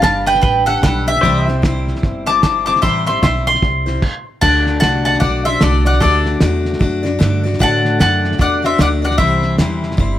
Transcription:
Already playing: pedal steel guitar B4 D5 G5
0.01 upright bass G1, steel-string acoustic guitar G3 D4 G4 B4, mandolin F5 A5, kick, snare, hi-hat pedal
0.26 mandolin B4 G5, snare
0.35 snare
0.41 upright bass A1, mandolin B4 G5, kick, snare
0.65 steel-string acoustic guitar D4 G4 B4, mandolin A4 F#5, snare
0.81 upright bass B1, steel-string acoustic guitar G3 D4 G4 B4, mandolin A4 F#5, kick, snare, hi-hat pedal
1.07 steel-string acoustic guitar D4 G4 B4, mandolin E5, snare
1.16 snare
1.21 upright bass C2, steel-string acoustic guitar C3 E3 G3 C4 E4 C5, pedal steel guitar C5 D5 G5, kick, snare
1.47 steel-string acoustic guitar G3 C4 E4 C5, pedal steel guitar E5, snare
1.62 steel-string acoustic guitar G3 C4 E4 C5, kick, snare, hi-hat pedal
1.88 snare
1.96 snare
2.03 upright bass G1, kick, snare
2.26 steel-string acoustic guitar G3 C4 E4 C5, mandolin A5 D6, snare
2.42 steel-string acoustic guitar G3 C4 E4 C5, mandolin A5 D6, kick, snare, hi-hat pedal
2.66 steel-string acoustic guitar G3 C4 E4 C5, mandolin A5 D6, snare
2.76 snare
2.82 upright bass A1, steel-string acoustic guitar C3 E3 G3 C4 E4 C5, mandolin E5 C6, kick, snare
3.06 steel-string acoustic guitar G3 C4 E4 C5, mandolin E5 C6, snare
3.22 upright bass B1, steel-string acoustic guitar G3 C4 E4 C5, mandolin E5 C6, kick, snare, hi-hat pedal
3.47 mandolin C6, snare
3.55 snare
3.62 upright bass C2, kick, snare
3.86 steel-string acoustic guitar G3 C4 E4 C5, snare
4.02 kick, crash
4.41 upright bass D2, steel-string acoustic guitar D3 A3 D4 F#4 D5, mandolin F#5 A5, kick, snare, crash
4.67 snare
4.80 upright bass C2, steel-string acoustic guitar D3 A3 D4 F#4 D5, mandolin F#5 A5, snare, hi-hat pedal
5.05 mandolin F#5 A5, snare
5.14 snare
5.20 upright bass B1, steel-string acoustic guitar A3 D4 F#4, mandolin D5 F#5, kick, snare
5.24 steel-string acoustic guitar D5
5.45 steel-string acoustic guitar D4 F#4 D5, mandolin C5 E5, snare
5.61 upright bass C2, steel-string acoustic guitar D3 A3 D4 F#4 D5, mandolin A4 D5, snare, hi-hat pedal
5.85 steel-string acoustic guitar D4 F#4 D5, mandolin D5 F#5, snare
5.93 snare
6.00 upright bass D2, steel-string acoustic guitar D3 A3 D4 F#4 D5, mandolin A4 D5, kick, snare
6.25 snare
6.40 upright bass E2, steel-string acoustic guitar D3 A3 D4 F#4 D5, snare, hi-hat pedal
6.65 snare
6.73 snare
6.79 upright bass F#2, steel-string acoustic guitar A3 D4 F#4 D5, kick, snare
7.03 steel-string acoustic guitar D4 F#4 D5, snare
7.19 upright bass G2, steel-string acoustic guitar D3 A3 D4 F#4 D5, snare, hi-hat pedal
7.43 steel-string acoustic guitar D4 F#4 D5, snare
7.53 snare
7.59 upright bass A2, steel-string acoustic guitar D3 A3 D4 F#4 D5, mandolin F#5 A5, kick, snare
7.85 snare
7.99 upright bass F#2, steel-string acoustic guitar D3 A3 D4 F#4 D5, mandolin F#5 A5, snare, hi-hat pedal
8.24 snare
8.32 snare
8.38 upright bass E2, steel-string acoustic guitar A3 D4 F#4 D5, mandolin D5 F#5, kick, snare
8.62 steel-string acoustic guitar D4 F#4 D5, mandolin C5 E5, snare
8.78 upright bass D2, steel-string acoustic guitar D3 A3 D4 F#4 D5, mandolin D5 F#5, snare, hi-hat pedal
9.02 steel-string acoustic guitar D4 F#4 D5, mandolin D5 F#5, snare
9.11 snare
9.18 upright bass C2, steel-string acoustic guitar C3 E3 G3 C4 E4 C5, mandolin C5 E5, kick, snare
9.43 snare
9.58 upright bass E2, steel-string acoustic guitar C3 E3 G3 C4 E4 C5, snare, hi-hat pedal
9.83 snare
9.91 snare
9.97 upright bass G1, steel-string acoustic guitar G3 C4 E4 C5, kick, snare

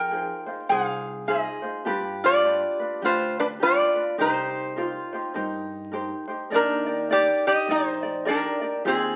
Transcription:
Already playing: upright bass F2, ukulele D#4 F4 C5, steel-string acoustic guitar G#4, resonator guitar played with a steel bar A#4 G5
0.11 ukulele D#4 F4 G#4 C5
0.46 ukulele D#4 F4 C5
0.69 upright bass C2, ukulele D#4 F4 G#4 C5, resonator guitar played with a steel bar G#4 F5
1.27 ukulele D#4 F4 G#4 C5, resonator guitar played with a steel bar G#4 D#5
1.62 ukulele D#4 F4 C5
1.85 upright bass G2, ukulele D4 F4 G4 B4, steel-string acoustic guitar G4
2.24 resonator guitar played with a steel bar F4 D5
2.44 ukulele D4 F4 G4 B4
2.80 ukulele D4 F4 B4
3.02 upright bass D2, ukulele D4 F4 G4 B4, resonator guitar played with a steel bar F4 C5
3.40 resonator guitar played with a steel bar D4 B4
3.60 ukulele D4 F4 G4 B4, resonator guitar played with a steel bar F4 D5
3.95 ukulele D4 F4 B4
4.18 upright bass C2, ukulele D#4 G4 A#4 C5, resonator guitar played with a steel bar D#4 C5, steel-string acoustic guitar G4
4.76 ukulele D#4 G4 A#4 C5, steel-string acoustic guitar F4
5.13 ukulele D#4 G4 C5
5.34 upright bass G2, ukulele D#4 G4 A#4 C5, steel-string acoustic guitar D#4
5.91 ukulele D#4 G4 A#4 C5
6.28 ukulele D#4 G4 C5
6.50 upright bass D#2, resonator guitar played with a steel bar D4, ukulele D#4 G4 A#4 D5, steel-string acoustic guitar D#4
6.55 resonator guitar played with a steel bar A#4
6.86 ukulele D#4 G4 D5
7.10 ukulele D#4 G4 A#4 D5, resonator guitar played with a steel bar G4 D5
7.47 resonator guitar played with a steel bar G4 D#5
7.67 upright bass A#1, ukulele D#4 G4 A#4 D5, resonator guitar played with a steel bar D#4
7.71 resonator guitar played with a steel bar C5
8.03 ukulele D#4 G4 D5
8.25 ukulele D#4 G4 A#4 D5, resonator guitar played with a steel bar A#4
8.29 resonator guitar played with a steel bar D4
8.61 ukulele D#4 G4 D5
8.85 upright bass D#2, resonator guitar played with a steel bar C4 G#4, ukulele D#4 G4 G#4 C5, steel-string acoustic guitar F4

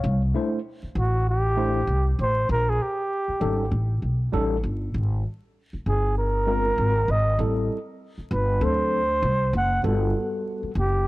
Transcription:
Already playing: tine electric piano C#5 F5
0.04 upright bass C2
0.34 tine electric piano A3 D4 E4 C5
0.83 muted upright bass stroke
0.95 upright bass A1, muted trumpet F#4
1.30 muted trumpet G4
1.57 tine electric piano A3 D4 E4 C5
1.87 upright bass C2
2.19 upright bass A1, muted trumpet C5
2.49 upright bass A#1, muted trumpet A#4
2.69 muted trumpet G#4
2.82 muted trumpet G4
3.28 muted upright bass stroke
3.40 upright bass G#1, tine electric piano G3 C#4 D#4 A4
3.71 upright bass A1
4.02 upright bass B1
4.32 upright bass A1, tine electric piano G3 C#4 D#4 A4
4.63 upright bass G1
4.94 upright bass G#1
5.73 muted upright bass stroke
5.86 upright bass G1, muted trumpet G#4
6.18 muted trumpet A#4
6.47 tine electric piano G#3 C4 F4 A#4
6.78 upright bass G#1
7.08 upright bass G#1, muted trumpet D#5
7.39 upright bass A1, tine electric piano G3 C4 E4 A4
8.18 muted upright bass stroke
8.31 upright bass G1, muted trumpet B4
8.61 upright bass D2, tine electric piano F#3 C4 D4 A4, muted trumpet C5
9.22 upright bass C2
9.53 upright bass F#1, muted trumpet F#5
9.83 upright bass G1, tine electric piano G3 B3 F#4 A4
10.63 muted upright bass stroke
10.75 upright bass F#1
10.79 muted trumpet G4

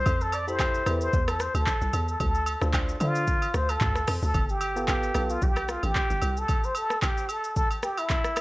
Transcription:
Already playing: muted trumpet C5
0.06 log drum bass F2, kick, high agogo, shaker
0.21 muted trumpet A4, shaker
0.32 muted trumpet D5, high agogo, shaker
0.47 synth stab E4 G4 A4 B5, muted trumpet C5, shaker
0.59 kick, clap, high agogo, low woodblock, shaker
0.75 shaker
0.86 log drum bass E2, synth stab E4 G4 A4 B4, cross-stick, high agogo, shaker
1.01 muted trumpet C5, shaker
1.13 log drum bass E2, kick, shaker
1.28 muted trumpet A4, cross-stick, high agogo, shaker
1.40 muted trumpet C5, cross-stick, shaker
1.55 log drum bass D2, muted trumpet A4, high agogo, shaker
1.67 kick, clap, shaker
1.81 log drum bass C2, shaker
1.93 log drum bass E2, high agogo, shaker
2.08 muted trumpet A4, shaker
2.20 log drum bass D2, muted trumpet A4, kick, high agogo, shaker
2.35 shaker
2.46 high agogo, shaker
2.61 log drum bass D2, synth stab D4 F4 C5, cross-stick, shaker
2.74 kick, clap, high agogo, low woodblock, shaker
2.89 shaker
3.00 log drum bass D3, synth stab D4 F4 C5, muted trumpet F4, high agogo, shaker
3.15 shaker
3.27 kick, shaker
3.42 high agogo, shaker
3.54 log drum bass D2, muted trumpet C5, cross-stick, shaker
3.69 muted trumpet A4, high agogo, shaker
3.81 log drum bass D2, kick, clap, mid tom, shaker
3.95 cross-stick, shaker
4.08 log drum bass F2, cross-stick, open hi-hat, high agogo, shaker
4.23 log drum bass D2, muted trumpet A4, shaker
4.34 log drum bass G1, kick, high agogo, shaker
4.49 muted trumpet G4, shaker
4.61 high agogo, shaker
4.76 synth stab B3 F4 A4, shaker
4.88 muted trumpet G4, kick, clap, high agogo, low woodblock, shaker
5.03 shaker
5.14 log drum bass B1, synth stab B3 F4 A4, cross-stick, high agogo, shaker
5.30 muted trumpet F4, shaker
5.42 log drum bass B1, muted trumpet G4, kick, shaker
5.56 cross-stick, high agogo, shaker
5.69 muted trumpet F4, cross-stick, shaker
5.83 log drum bass A1, muted trumpet G4, high agogo, shaker
5.95 kick, clap, shaker
6.10 log drum bass G1, shaker
6.22 log drum bass C2, high agogo, shaker
6.37 muted trumpet A4, shaker
6.48 kick, high agogo, shaker
6.64 muted trumpet C5, shaker
6.75 muted trumpet A4, high agogo, shaker
6.90 cross-stick, shaker
7.02 muted trumpet G4, kick, clap, high agogo, low woodblock, shaker
7.17 shaker
7.29 muted trumpet A4, high agogo, shaker
7.44 shaker
7.56 muted trumpet A4, kick, shaker
7.71 high agogo, shaker
7.83 muted trumpet G4, cross-stick, shaker
7.97 muted trumpet E4, high agogo, shaker
8.10 kick, clap, shaker
8.24 cross-stick, shaker
8.36 cross-stick, high agogo, shaker

